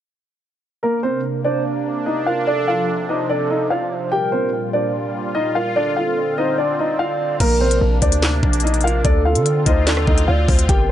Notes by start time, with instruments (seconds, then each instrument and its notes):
0.83 analog synth pad C3 A#3 D4, grand piano A#3 A#4, soft synth lead A#4
1.03 grand piano C4 C5
1.44 grand piano D4 D5, soft synth lead C5
2.06 grand piano D#4 D#5
2.26 grand piano F4 F5, soft synth lead A#4
2.47 analog synth pad C3 F3, grand piano D4 D5, soft synth lead A4
2.68 grand piano F4 F5
3.09 grand piano D#4 D#5, soft synth lead C5
3.29 grand piano D4 D5, soft synth lead A4
3.50 grand piano D#4 D#5
3.70 grand piano F4 F5, soft synth lead D5
3.91 soft synth lead C5
4.12 analog synth pad A#2 G3 F4, grand piano G4 G5, soft synth lead A#4
4.32 grand piano C4 C5
4.73 grand piano D4 D5, soft synth lead C5
5.35 grand piano D#4 D#5
5.55 grand piano F4 F5, soft synth lead A#4
5.76 analog synth pad D3 C4, grand piano D4 D5, soft synth lead A4
5.97 grand piano F4 F5
6.38 grand piano D#4 D#5, soft synth lead C5
6.58 grand piano D4 D5, soft synth lead D5
6.79 grand piano D#4 D#5
6.99 grand piano F4 F5
7.40 808-style bass A#1, analog synth pad C3 A#3 D4, grand piano A#3 A#4, soft synth lead A#4, kick, closed hi-hat, crash
7.61 grand piano C4 C5
7.71 closed hi-hat
7.81 808-style bass A#1
8.02 808-style bass D2, grand piano D4 D5, soft synth lead C5, kick, closed hi-hat
8.12 closed hi-hat
8.22 snare, clap
8.43 808-style bass A#1, kick
8.53 closed hi-hat
8.60 grand piano D#5, closed hi-hat
8.64 grand piano D#4, closed hi-hat
8.74 closed hi-hat
8.81 soft synth lead A#4, grand piano F5, closed hi-hat
8.85 grand piano F4, closed hi-hat
9.05 808-style bass D2, analog synth pad D3 C4 F4, grand piano D4 D5, soft synth lead A4, kick, closed hi-hat
9.25 grand piano F4 F5
9.35 808-style bass D3, closed hi-hat
9.46 closed hi-hat
9.66 808-style bass D2, grand piano D#4 D#5, soft synth lead C5, kick, closed hi-hat
9.87 808-style bass D#2, grand piano D4 D5, soft synth lead A4, snare, clap, closed hi-hat
9.97 cross-stick
10.07 808-style bass D2, grand piano D#4 D#5, kick
10.18 closed hi-hat
10.28 808-style bass D2, grand piano F4 F5, soft synth lead D5
10.48 808-style bass D2, soft synth lead C5, kick, open hi-hat
10.59 closed hi-hat
10.69 808-style bass G1, analog synth pad F3 A#3 G4, grand piano G4 G5, soft synth lead A#4, kick, closed hi-hat